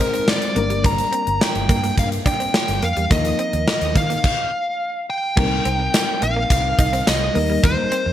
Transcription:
Already playing: A#4
0.00 G#3 C4 D#4 C5
0.14 C4, closed hi-hat
0.28 D5, muted clean electric guitar stroke, snare
0.42 closed hi-hat
0.55 G1 G3 A#3 D4 A#4, closed hi-hat
0.70 G3, closed hi-hat
0.84 A#3 A#5, kick, closed hi-hat
0.98 closed hi-hat
1.12 C4, closed hi-hat
1.27 G1, muted clean electric guitar stroke, closed hi-hat
1.41 G5, muted clean electric guitar stroke, snare
1.55 G1, closed hi-hat
1.69 G2 A#3, kick, closed hi-hat
1.83 A#3, closed hi-hat
1.97 G2 F5, muted clean electric guitar stroke, kick, closed hi-hat
2.12 closed hi-hat
2.26 D4 G5, kick, closed hi-hat
2.40 C4, closed hi-hat
2.54 muted clean electric guitar stroke, snare
2.68 G1, closed hi-hat
2.82 F2 A#3 F5, closed hi-hat
2.97 E2 G3, closed hi-hat
3.10 D#2 F3 A#3 D#4 A#4 D#5, kick, closed hi-hat
3.25 closed hi-hat
3.39 C4, closed hi-hat
3.53 D#2, muted clean electric guitar stroke, closed hi-hat
3.68 D#5, muted clean electric guitar stroke, snare
3.82 D#2, closed hi-hat
3.95 D#3 A#3 F5, kick, closed hi-hat
4.10 A#3, closed hi-hat
4.24 kick, crash
5.10 G5
5.36 C2 G3 A#3 C4 D#4 A#4, kick, crash
5.65 C2 C4, closed hi-hat
5.80 muted clean electric guitar stroke
5.94 muted clean electric guitar stroke, snare, closed hi-hat, tambourine
6.22 A#1 A#3 F5, closed hi-hat
6.36 A#3
6.50 C2, muted clean electric guitar stroke, kick, closed hi-hat
6.79 C2 D#4, kick, closed hi-hat
6.93 C4, closed hi-hat
7.07 C2 D#5, muted clean electric guitar stroke, snare, closed hi-hat, tambourine
7.34 D#2 G3 A#3 D#4 A#4, open hi-hat
7.50 G3
7.64 D#2 A#3 C5, kick, closed hi-hat
7.92 C4, closed hi-hat
8.06 F2, muted clean electric guitar stroke

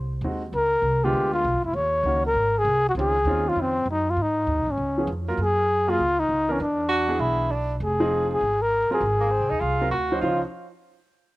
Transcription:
Already playing: C2
0.21 D#2 D#3 G#3 C4 F#4
0.53 C#2 A#4
0.82 C2
1.04 D3 G#3 B3 F4 G4
1.13 D2
1.34 F4
1.44 B1
1.54 G#1
1.64 F1 E4
1.73 D#2 C#5
2.03 C#2 D#3 A#3 C#4 F#4
2.26 A#4
2.34 G#1
2.59 G#4
2.65 C2
2.89 F#4
2.95 C#2 D#3 C4 C#4 F4
3.00 G#4
3.25 D#2 D#3 C4 C#4 F4
3.49 F4
3.55 F2
3.61 C4
3.85 F#2
3.91 D#4
4.10 F4
4.17 G#2
4.22 D#4
4.47 D#2
4.58 B1
4.66 G#1
4.71 C#4
4.77 C#2
4.98 F3 B3 C#4 G#4
5.07 F2
5.28 F#3 A#3 F4 A#4
5.37 F#2
5.42 G#4
5.87 F#3 A#3 F4 G#4
5.99 C#2
6.20 D#4
6.29 C#2
6.48 E3 B3 C#4 D4 A#4
6.60 E2 D4
6.89 F#4
7.08 E3 B3 D4 G#4
7.19 B1 E4
7.51 D4
7.80 F1 G#4
8.00 F3 C4 D#4 G#4
8.33 G#4
8.41 G#1
8.62 A#4
8.90 F#3 C4 F4 G#4 A#4, muted upright bass stroke
9.00 G#1
9.20 A#3
9.31 C4
9.40 C2
9.50 D#2 D#4
9.60 C2 F4
9.81 F#3 C4 F4 A#4
9.90 D2 F#4
10.12 F3 C#4 D#4 C5
10.21 C#2 F3 C#4 D#4 F4 C5

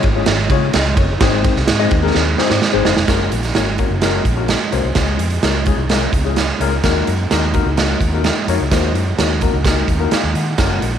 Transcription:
0.03 G#1, kick, ride
0.15 G#3 C#4 F4 G#4 C#5
0.26 G#1, snare, ride
0.50 C#3 G#3 C#4 F4 G#4 C#5, kick, ride
0.73 C#2 D#5, snare, ride
0.97 F#1 C#5, kick, ride
1.21 G#1 G#3 C4 D#4 G#4 C5, kick, snare, ride
1.44 kick, ride
1.56 C2, snare
1.68 G#2, snare, ride
1.79 G#3 C4 D#4 G#4 D#5
1.91 D#2, kick, ride
2.02 G#3 C4 D#4 G#4 A#4
2.15 D#2, snare
2.38 G#3 C4 D#4 G#4 C5, snare
2.50 G#2, snare
2.62 snare
2.73 G#1 G#3 C4 D#4 G#4 C5
2.85 F#1, snare
2.97 F1, snare
3.08 F#1 A#3 C#4 F#4 A#4, kick, snare, closed hi-hat
3.32 A#1, closed hi-hat
3.43 snare, closed hi-hat
3.55 G#1 A#3 C#4 F#4 C#5, snare, closed hi-hat
3.78 A#3 C#4 F#4 C#5, kick, closed hi-hat
3.90 F#1
4.02 A#3 C#4 F#4 A#4, snare, closed hi-hat
4.25 A#1, kick, closed hi-hat
4.37 A#3 C#4 F#4 A#4
4.48 snare, closed hi-hat
4.72 C2 A#3 C#4 F#4 C5, closed hi-hat
4.84 C2
4.95 C#2 G#3 C#4 F4 G#4, kick, snare, closed hi-hat
5.19 F2, closed hi-hat
5.30 closed hi-hat
5.43 C#2 G#3 C#4 F4 A#4, snare, closed hi-hat
5.66 G#3 C#4 F4 G#4, kick, closed hi-hat
5.78 C2
5.90 G#3 C#4 F4 A#4, snare, closed hi-hat
6.13 C#2, kick, closed hi-hat
6.25 G#3 C#4 F4 G#4
6.36 snare, closed hi-hat
6.60 C#2 G#3 C#4 F4 A#4, closed hi-hat
6.83 D#2 A#3 D#4 F#4 A#4, kick, snare, closed hi-hat
7.07 F#2, closed hi-hat
7.31 D#2 A#3 D#4 F#4 A#4, snare, closed hi-hat
7.54 A#3 D#4 F#4 A#4, kick, closed hi-hat
7.66 C#2
7.77 A#3 D#4 F#4 A#4, snare, closed hi-hat
8.01 D#2, kick, closed hi-hat
8.13 A#3 D#4 F#4 A#4
8.24 snare, closed hi-hat
8.48 F2 A#3 D#4 F#4 C#5, closed hi-hat
8.60 C#2
8.71 D#2 A#3 D#4 F#4 C5, kick, snare, closed hi-hat
8.95 F#2, closed hi-hat
9.18 D#2 A#3 D#4 F#4 C#5, snare, closed hi-hat
9.41 A#3 D#4 F#4 A#4, kick, closed hi-hat
9.54 C#2
9.65 A#3 D#4 F#4 A#4, kick, snare, closed hi-hat
9.88 D#2, kick, closed hi-hat
10.00 A#3 D#4 F#4 A#4
10.11 F5, muted fingered electric bass stroke, snare, closed hi-hat
10.23 D#2
10.35 D#3 F#5, closed hi-hat
10.58 F#1 A#3 C#4 F#4 A#4, kick, snare, closed hi-hat
10.82 A#1, closed hi-hat

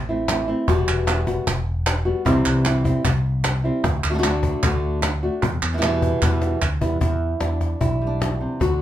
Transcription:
Already playing: A1
0.09 A3 C4 E4
0.28 E3 A3 C4 E4, cajon slap, clap
0.48 A3 C4 E4
0.68 E1 B2 E3 G3 B3 F#4, cajon bass
0.88 E1, cajon slap, clap
1.07 E3 G3 B3 F#4, cajon slap, clap
1.27 G3 B3 F#4, cajon bass
1.47 E1, muted nylon-string guitar stroke, cajon bass, clap
1.67 cajon slap
1.87 cajon slap, clap
2.05 G3 B3 F#4
2.25 C2 C3 E3 G3 C4 E4, cajon bass
2.46 C2, cajon slap, clap
2.65 E3 G3 C4 E4, cajon slap, clap
2.84 G3 C4 E4, cajon bass
3.04 C2, muted nylon-string guitar stroke, cajon bass, clap
3.44 cajon slap, clap
3.64 G3 C4 E4
3.84 D2, muted nylon-string guitar stroke, cajon bass
4.04 D2, clap
4.09 D3 A3 D4 F#4
4.14 D3 A3 D4 F#4
4.18 D3 A3 D4 F#4
4.23 D3 A3 D4 F#4, cajon slap, clap
4.43 cajon bass
4.63 D2 D3 A3 D4 F#4, cajon bass, clap
5.02 muted nylon-string guitar stroke, cajon slap, clap
5.23 A3 D4 F#4
5.43 E2, muted nylon-string guitar stroke, cajon bass
5.62 E2, clap
5.73 E3 G3 B3 E4
5.78 E3 G3 B3 E4
5.82 B2 E3 G3 B3 E4, cajon slap, clap
6.02 cajon bass
6.22 E2 B2 E3 G3 B3 E4, cajon bass, clap
6.42 cajon slap
6.61 D2, muted nylon-string guitar stroke, cajon bass, clap
6.81 E2 G3 B3 E4, cajon bass
7.01 E2 E4, cajon bass
7.40 E2 D4, cajon slap
7.60 E4, cajon bass, cajon slap
7.81 B1 E4, cajon bass
8.01 G3
8.07 D4
8.20 B2 E4, cajon slap
8.41 C3
8.60 D2 D3 F#4, cajon bass

